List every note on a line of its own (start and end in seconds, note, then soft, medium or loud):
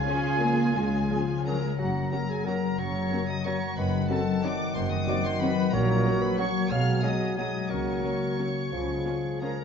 0.00 0.74 C#3 medium
0.00 0.39 G#3 medium
0.00 1.63 F4 medium
0.00 1.45 G#4 medium
0.00 1.18 G#5 medium
0.00 1.42 G#5 medium
0.05 0.18 F3 medium
0.05 0.38 C#4 medium
0.05 0.18 C#4 medium
0.05 1.08 G#4 medium
0.05 0.18 G#4 medium
0.23 1.26 F4 medium
0.41 0.53 F3 medium
0.41 0.91 G#3 medium
0.41 0.75 A#3 medium
0.41 0.54 C#4 medium
0.41 0.54 G#4 medium
0.58 1.61 C#4 medium
0.75 1.03 C#2 medium
0.75 1.80 C#3 medium
0.75 1.09 G#3 medium
0.92 1.44 G#3 medium
1.09 1.45 F3 medium
1.09 1.23 F3 medium
1.09 1.23 C#4 medium
1.09 1.80 G#4 medium
1.09 1.23 G#4 medium
1.27 1.80 F4 medium
1.45 1.59 F3 medium
1.45 1.63 F#3 medium
1.45 1.80 G#3 medium
1.45 1.59 C#4 medium
1.45 1.58 G#4 medium
1.45 1.76 A#4 medium
1.45 1.76 A#5 medium
1.62 1.69 G#3 medium
1.62 3.79 C#4 soft
1.78 2.06 F#1 medium
1.78 2.77 F#2 medium
1.78 2.06 F#2 medium
1.78 2.42 F#3 medium
1.78 2.12 F#4 medium
1.78 2.11 F#5 medium
1.78 2.42 A#5 medium
1.94 2.28 F#3 soft
2.11 2.21 F#3 medium
2.11 2.24 A#3 soft
2.11 2.20 A#3 soft
2.11 2.21 C#4 medium
2.11 2.20 F#4 medium
2.11 2.25 F#4 soft
2.11 3.10 A#4 medium
2.11 2.29 A#4 medium
2.11 2.28 A#5 medium
2.29 2.62 F#3 soft
2.29 2.46 G#4 medium
2.29 2.46 G#5 medium
2.45 2.93 C#3 soft
2.45 2.54 F#3 medium
2.45 2.78 F#3 medium
2.45 2.58 A#3 soft
2.45 2.54 A#3 medium
2.45 2.55 C#4 medium
2.45 2.58 F#4 medium
2.45 2.54 F#4 medium
2.45 2.78 A#4 medium
2.45 2.78 A#5 medium
2.45 2.77 A#5 medium
2.63 3.27 F#3 soft
2.77 3.05 F#1 medium
2.77 3.76 F#2 medium
2.77 3.06 F#2 medium
2.77 3.44 F#3 medium
2.77 3.28 C#5 medium
2.77 3.45 A#5 medium
2.77 3.28 C#6 medium
2.94 3.43 C#3 soft
3.11 3.19 F#3 medium
3.11 3.19 A#3 medium
3.11 3.24 A#3 medium
3.11 3.20 C#4 medium
3.11 3.19 F#4 medium
3.11 3.24 F#4 soft
3.11 3.79 A#4 medium
3.27 3.61 F#3 soft
3.27 3.46 D#5 medium
3.27 3.45 D#6 medium
3.44 3.78 C#3 medium
3.44 3.53 F#3 medium
3.44 3.77 F#3 medium
3.44 3.53 A#3 medium
3.44 3.58 A#3 medium
3.44 3.54 C#4 medium
3.44 3.54 F#4 soft
3.44 3.58 F#4 medium
3.44 3.78 C#5 medium
3.44 3.76 A#5 medium
3.44 3.77 C#6 medium
3.62 3.92 F#3 medium
3.77 4.04 F#1 medium
3.77 4.74 F#2 medium
3.77 4.04 F#2 medium
3.77 4.09 D#3 medium
3.77 4.09 B4 medium
3.77 4.09 F#5 medium
3.77 4.10 B5 medium
3.93 4.25 F#3 soft
4.09 4.74 D#3 medium
4.09 4.17 F#3 medium
4.09 4.18 C4 medium
4.09 4.22 C4 medium
4.09 4.19 D#4 medium
4.09 4.22 F#4 medium
4.09 4.19 F#4 medium
4.09 4.43 A4 medium
4.09 5.07 C5 medium
4.09 4.74 F#5 medium
4.09 4.42 A5 medium
4.27 4.58 F#3 medium
4.42 4.90 D#3 medium
4.42 4.52 F#3 medium
4.42 4.55 C4 medium
4.42 4.52 C4 medium
4.42 4.51 D#4 medium
4.42 4.51 F#4 medium
4.42 4.55 F#4 medium
4.42 4.75 D5 medium
4.42 4.74 D6 loud
4.59 5.23 F#3 medium
4.74 5.02 F#1 medium
4.74 5.74 F#2 medium
4.74 5.02 F#2 medium
4.74 5.74 D#3 medium
4.74 4.90 C5 medium
4.74 5.71 F#5 medium
4.74 4.91 C6 medium
4.89 5.39 D#3 medium
4.89 4.95 D#5 medium
4.89 5.07 D#6 medium
5.06 5.16 F#3 medium
5.06 5.20 C4 medium
5.06 5.16 C4 medium
5.06 5.16 D#4 medium
5.06 5.20 F#4 medium
5.06 5.16 F#4 medium
5.06 5.74 C5 medium
5.06 5.24 D5 medium
5.06 5.24 D6 loud
5.24 5.56 F#3 medium
5.24 5.41 C5 medium
5.24 5.41 C6 loud
5.40 5.74 D#3 medium
5.40 5.50 F#3 medium
5.40 5.50 C4 medium
5.40 5.53 C4 medium
5.40 5.50 D#4 medium
5.40 5.50 F#4 medium
5.40 5.54 F#4 medium
5.40 5.72 B4 medium
5.40 5.72 B5 loud
5.57 5.87 F#3 medium
5.72 5.99 A#1 medium
5.72 6.71 A#2 medium
5.72 5.99 A#2 medium
5.72 6.38 F#3 medium
5.72 6.34 A#3 medium
5.72 6.34 F#4 medium
5.72 6.22 A#4 medium
5.72 6.37 C#5 medium
5.72 6.21 A#5 medium
5.88 6.20 F#3 medium
6.05 6.14 F#3 medium
6.05 6.14 A#3 medium
6.05 6.13 C#4 medium
6.05 6.13 F#4 medium
6.05 6.71 C#5 medium
6.21 6.53 F#3 medium
6.21 6.38 B4 medium
6.21 6.38 B5 loud
6.38 6.46 F#3 medium
6.38 6.70 F#3 medium
6.38 6.71 A#3 medium
6.38 6.46 A#3 medium
6.38 6.70 A#3 medium
6.38 6.47 C#4 medium
6.38 6.70 F#4 medium
6.38 6.47 F#4 medium
6.38 6.70 C#5 medium
6.38 6.72 C#5 medium
6.38 6.70 C#6 loud
6.55 7.36 F#3 medium
6.69 6.97 B1 medium
6.69 7.71 B2 medium
6.69 6.97 B2 medium
6.69 7.03 F#3 medium
6.69 7.03 G#3 medium
6.69 7.03 F#4 medium
6.69 7.03 G#4 medium
6.69 7.02 F5 medium
6.69 7.02 F6 medium
6.86 7.19 G#3 soft
7.03 7.11 F#3 medium
7.03 7.37 F#3 medium
7.03 7.11 G#3 medium
7.03 7.37 G#3 medium
7.03 7.11 D#4 medium
7.03 7.37 F#4 medium
7.03 7.11 G#4 medium
7.03 7.36 G#4 medium
7.03 7.71 B4 medium
7.03 7.36 D#5 medium
7.03 7.36 D#6 medium
7.20 7.53 G#3 medium
7.37 8.73 F#3 soft
7.37 7.46 F#3 soft
7.37 7.70 F#3 medium
7.37 7.46 G#3 medium
7.37 7.70 G#3 medium
7.37 7.46 D#4 medium
7.37 7.70 F#4 medium
7.37 7.71 G#4 medium
7.37 7.46 G#4 soft
7.37 7.69 D#5 medium
7.37 7.69 D#6 medium
7.54 7.71 G#3 soft
7.70 7.98 C#2 medium
7.70 8.71 C#3 medium
7.70 7.98 C#3 medium
7.70 8.43 F#3 medium
7.70 8.71 A#3 medium
7.70 8.71 F#4 medium
7.70 8.44 A#4 medium
7.70 9.19 C#5 medium
7.70 9.42 C#6 medium
7.86 8.20 C#4 soft
8.04 8.12 F#3 soft
8.04 8.12 C#4 soft
8.04 8.12 F#4 soft
8.04 8.12 A#4 soft
8.39 8.47 F#3 soft
8.39 8.73 A#3 soft
8.39 8.47 C#4 soft
8.39 8.47 F#4 soft
8.39 8.47 A#4 soft
8.56 8.87 C#4 soft
8.72 9.00 C#2 medium
8.72 9.00 C#3 medium
8.72 9.64 C#3 soft
8.72 9.38 F3 soft
8.72 9.41 G#3 medium
8.72 9.41 F4 soft
8.72 9.37 G#4 soft
8.88 9.23 C#4 soft
9.06 9.14 G#3 soft
9.06 9.14 C#4 soft
9.06 9.14 F4 soft
9.06 9.64 G#4 soft
9.06 9.14 G#4 soft
9.24 9.57 C#4 soft
9.41 9.58 F3 soft
9.41 9.50 G#3 soft
9.41 9.64 G#3 soft
9.41 9.59 G#3 soft
9.41 9.50 C#4 soft
9.41 9.49 F4 soft
9.41 9.59 F4 soft
9.41 9.50 G#4 soft
9.41 9.58 G#4 soft
9.41 9.64 A#4 medium
9.41 9.64 A#5 medium
9.59 9.64 C#4 soft